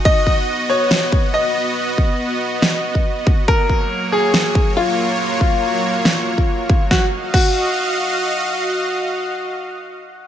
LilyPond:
<<
  \new Staff \with { instrumentName = "Grand piano" } { \time 4/4 \key ees \minor \tempo 4 = 140 dis''4. des''4. dis''4~ | dis''1 | bes'4. aes'4. f'4~ | f'1 |
ges'8 r8 ges'2.~ | ges'1 | }
  \new Staff \with { instrumentName = "Supersaw synth" } { \time 4/4 \key ees \minor <b ges' ees''>1~ | <b ges' ees''>1 | <ges bes des''>1~ | <ges bes des''>1 |
<ges' ees'' f''>1~ | <ges' ees'' f''>1 | }
  \new DrumStaff \with { instrumentName = "Drums" } \drummode { \time 4/4 bd8 bd8 r4 sn8 bd8 r4 | r8 bd8 r4 sn8. bd16 r8 bd8 | bd8 bd8 r4 sn8 bd8 r4 | r8 bd8 r4 sn8. bd16 r8 bd8 |
<bd sn>4 <cymc bd>4 r4 r4 | r4 r4 r4 r4 | }
>>